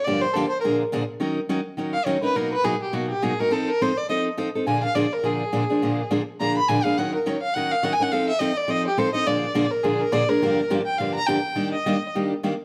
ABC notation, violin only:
X:1
M:4/4
L:1/8
Q:"Swing" 1/4=209
K:Bb
V:1 name="Violin"
d c A c B z3 | [K:Ebm] z4 z f d c | ^A =B _A =G ^F G A ^A | =A B =c =d e z3 |
a f =d B A4- | A2 z2 b c' a f | g B d f g f (3g a g | f _f e =d e =G =c e |
=d3 B A B d B- | [K:Gm] B2 z g f b g2- | g e3 z4 |]